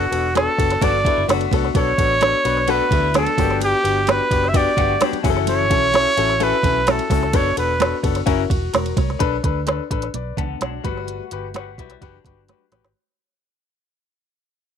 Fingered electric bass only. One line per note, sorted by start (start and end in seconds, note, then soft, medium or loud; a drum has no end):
0.11 0.46 E1 medium
0.59 0.76 F#1 medium
0.81 1.07 G1 loud
1.17 1.26 F#1 medium
1.29 1.46 F#1 loud
1.52 1.69 C2 loud
1.75 1.92 B1 loud
1.98 2.32 A1 medium
2.45 2.79 B1 medium
2.91 3.25 D2 loud
3.38 3.72 G1 loud
3.84 4.19 G1 medium
4.31 4.65 F#1 medium
4.77 4.94 G1 loud
5.13 muted fingered electric bass stroke medium
5.24 5.70 F#1 loud
5.70 6.05 B1 medium
6.17 6.52 A1 medium
6.63 6.98 B1 loud
7.10 7.35 C#2 loud
7.34 7.51 F#1 loud
7.57 7.92 E1 medium
8.04 8.21 F#1 medium
8.27 8.44 F#1 loud
8.50 8.68 E1 loud
8.74 8.91 E1 loud
8.97 9.14 C2 medium
9.21 9.38 B1 loud
9.44 9.78 D2 medium
9.91 10.08 A1 medium
10.14 10.31 B1 loud
10.37 10.55 C#2 medium
10.61 10.78 B1 loud
10.85 11.19 G1 loud
11.32 11.78 G1 medium
11.78 11.95 B1 medium
12.02 12.19 F#1 loud
12.25 12.51 G1 medium
12.72 12.80 A1 medium